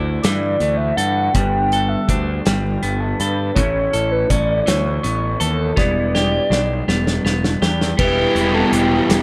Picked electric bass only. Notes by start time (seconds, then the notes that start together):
Already playing: D2
0.24 G2
0.60 D2
0.97 G2
1.34 G1
2.09 D2
2.46 G1
2.83 G1
3.20 G2
3.57 A1
3.94 A1
4.30 A1
4.68 D2
5.04 A1
5.41 D#2
5.77 E1
6.50 B1
6.88 E1
7.25 E1
7.62 E2
7.99 E1
8.35 E1
8.72 E1
9.10 E1